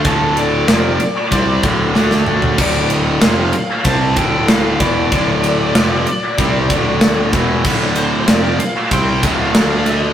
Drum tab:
CC |----------------|x---------------|----------------|x---------------|
RD |x-x-x-x-x-x-----|--x-x-x-x-x-x-x-|x-x-x-x-x-x-x-x-|--x-x-x-x-x-x-x-|
SD |----o-------oo--|----o-------o---|----o-------o---|----o-------o---|
T2 |--------------o-|----------------|----------------|----------------|
FT |---------------o|----------------|----------------|----------------|
BD |o-------o-o-----|o-------o-o---o-|o-------o-o---o-|o-------o-o-----|